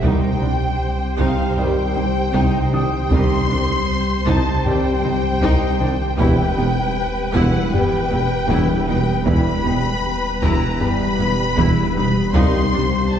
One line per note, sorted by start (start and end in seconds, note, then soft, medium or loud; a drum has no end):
0.00 0.18 C2 medium
0.00 0.12 C2 medium
0.00 3.11 C2 medium
0.00 0.12 C2 medium
0.00 0.27 C3 loud
0.00 3.07 G3 medium
0.00 0.31 C4 medium
0.00 3.11 C4 medium
0.00 0.39 D#4 medium
0.00 0.31 G4 medium
0.00 3.07 G4 medium
0.00 3.07 C5 medium
0.00 3.11 C5 medium
0.00 1.93 F#5 medium
0.00 1.19 G5 loud
0.04 0.32 D#3 medium
0.04 0.32 G3 medium
0.04 taiko loud
0.42 0.58 C2 medium
0.42 0.50 C2 medium
0.42 0.51 C2 medium
0.42 0.65 G3 medium
0.42 0.50 D4 medium
1.18 1.26 C2 loud
1.18 1.34 C2 medium
1.18 1.27 C2 medium
1.18 1.42 C3 medium
1.18 1.54 D#4 medium
1.18 1.57 F5 medium
1.18 1.57 F5 loud
1.18 3.46 G5 medium
1.18 taiko medium
1.57 1.85 D#3 medium
1.57 1.85 G3 medium
1.57 1.85 C4 medium
1.57 1.85 G4 medium
1.57 2.71 G5 loud
1.57 2.73 G5 loud
1.57 taiko low medium
1.95 2.11 C2 medium
1.95 2.04 C2 medium
1.95 2.19 G3 medium
1.95 2.03 D#4 medium
2.33 2.41 C2 medium
2.33 2.42 C2 loud
2.33 2.50 C2 loud
2.33 2.58 C3 loud
2.33 2.70 D#4 medium
2.33 taiko medium
2.72 2.80 C2 medium
2.72 2.89 C2 medium
2.72 2.97 D#3 medium
2.72 2.80 D4 medium
2.72 3.12 G5 medium
2.72 3.12 G5 loud
2.72 5.00 D#6 medium
3.10 3.18 C2 medium
3.10 3.19 C2 loud
3.10 6.21 C2 medium
3.10 3.27 C2 loud
3.10 3.34 C3 loud
3.10 3.39 D#3 medium
3.10 3.39 G3 medium
3.10 6.16 G3 medium
3.10 3.39 C4 medium
3.10 6.16 C4 medium
3.10 3.47 D#4 medium
3.10 3.39 G4 medium
3.10 6.16 G4 medium
3.10 6.15 C5 medium
3.10 6.16 C5 medium
3.10 4.28 C6 loud
3.10 taiko loud
3.49 3.57 C2 medium
3.49 3.65 C2 medium
3.49 3.73 G3 medium
3.49 3.58 D4 medium
4.26 4.42 C2 loud
4.26 4.34 C2 loud
4.26 4.50 C3 loud
4.26 4.63 D#4 medium
4.26 4.66 A5 loud
4.26 4.65 A5 loud
4.26 taiko medium
4.65 4.93 D#3 medium
4.65 4.93 G3 medium
4.65 4.94 C4 medium
4.65 4.94 G4 loud
4.65 6.16 G5 loud
4.65 6.18 G5 loud
4.65 taiko low medium
5.03 5.11 C2 medium
5.03 5.20 C2 medium
5.03 5.28 G3 medium
5.03 5.12 D#4 medium
5.41 5.49 C2 loud
5.41 5.50 C2 loud
5.41 5.57 C2 loud
5.41 5.66 C3 loud
5.41 5.78 D#4 loud
5.41 taiko medium
5.79 5.87 C2 medium
5.79 5.89 C2 medium
5.79 5.96 C2 medium
5.79 6.04 D#3 medium
5.79 5.88 D4 medium
6.18 9.26 E1 medium
6.18 6.27 E1 loud
6.18 6.35 E1 loud
6.18 6.27 E2 loud
6.18 6.46 E3 medium
6.18 6.43 E3 loud
6.18 6.47 G3 medium
6.18 9.23 G3 medium
6.18 9.25 B3 medium
6.18 6.47 B3 medium
6.18 6.55 E4 medium
6.18 9.23 G4 medium
6.18 6.47 G4 medium
6.18 9.23 B4 medium
6.18 9.27 B4 medium
6.18 7.33 G5 loud
6.18 8.47 B5 medium
6.18 taiko loud
6.57 6.73 E1 medium
6.57 6.65 E1 medium
6.57 6.65 E2 medium
6.57 6.82 B3 medium
6.57 6.65 D#4 medium
7.33 7.49 E1 loud
7.33 7.43 E1 loud
7.33 7.42 E2 loud
7.33 7.58 E3 medium
7.33 7.70 E4 loud
7.33 7.73 F#5 loud
7.33 7.74 F#5 loud
7.33 taiko medium
7.73 8.01 E3 medium
7.73 8.01 G3 medium
7.73 8.01 B3 medium
7.73 8.01 G4 loud
7.73 8.86 G5 loud
7.73 taiko low medium
8.11 8.27 E1 medium
8.11 8.20 E1 medium
8.11 8.19 E2 medium
8.11 8.35 B3 medium
8.11 8.19 E4 medium
8.49 8.65 E1 loud
8.49 8.58 E1 loud
8.49 8.57 E2 loud
8.49 8.74 E3 medium
8.49 8.86 E4 medium
8.49 taiko medium
8.87 9.03 E1 medium
8.87 8.97 E1 medium
8.87 8.96 E2 medium
8.87 9.12 G3 medium
8.87 8.96 D#4 medium
8.87 9.26 G5 medium
8.87 9.27 G5 loud
9.26 9.42 E1 loud
9.26 12.36 E1 medium
9.26 9.36 E1 loud
9.26 9.34 E2 loud
9.26 9.50 E3 loud
9.26 9.55 E3 medium
9.26 13.19 G3 medium
9.26 9.55 G3 medium
9.26 12.31 B3 medium
9.26 9.55 B3 medium
9.26 9.63 E4 medium
9.26 9.54 G4 medium
9.26 13.19 G4 medium
9.26 12.31 B4 medium
9.26 12.30 G5 medium
9.26 10.40 B5 loud
9.26 10.41 B5 loud
9.26 taiko loud
9.64 9.80 E1 medium
9.64 9.74 E1 medium
9.64 9.72 E2 medium
9.64 9.89 B3 medium
9.64 9.73 D#4 medium
9.64 11.93 G5 medium
10.41 10.57 E1 medium
10.41 10.51 E1 loud
10.41 10.50 E2 loud
10.41 10.65 E3 loud
10.41 10.78 E4 loud
10.41 10.80 A#5 loud
10.41 10.81 A#5 loud
10.41 taiko medium
10.80 11.08 E3 medium
10.80 11.08 G3 medium
10.80 11.09 B3 medium
10.80 11.09 G4 medium
10.80 11.96 B5 loud
10.80 taiko low medium
11.18 11.34 E1 medium
11.18 11.28 E1 medium
11.18 11.27 E2 medium
11.18 11.43 B3 medium
11.18 11.27 E4 medium
11.57 11.73 E1 medium
11.57 11.66 E1 loud
11.57 11.66 E2 loud
11.57 11.81 E3 loud
11.57 11.93 E4 medium
11.57 taiko medium
11.95 12.11 E1 medium
11.95 12.04 E1 medium
11.95 12.04 E2 medium
11.95 12.20 G3 medium
11.95 12.05 D#4 medium
11.95 12.35 B5 medium
11.95 12.35 B5 loud
12.33 12.41 C2 loud
12.33 13.19 C2 medium
12.33 12.50 C2 loud
12.33 12.43 C2 medium
12.33 12.58 C3 loud
12.33 12.62 D#3 medium
12.33 12.62 G3 medium
12.33 12.63 C4 medium
12.33 13.19 C4 medium
12.33 12.71 D#4 medium
12.33 12.63 G4 medium
12.33 13.19 C5 medium
12.33 13.19 F5 medium
12.33 13.12 C6 loud
12.33 taiko loud
12.72 12.80 C2 medium
12.72 12.81 C2 medium
12.72 12.89 C2 medium
12.72 12.96 G3 medium
12.72 12.82 D4 medium
13.10 13.19 A5 loud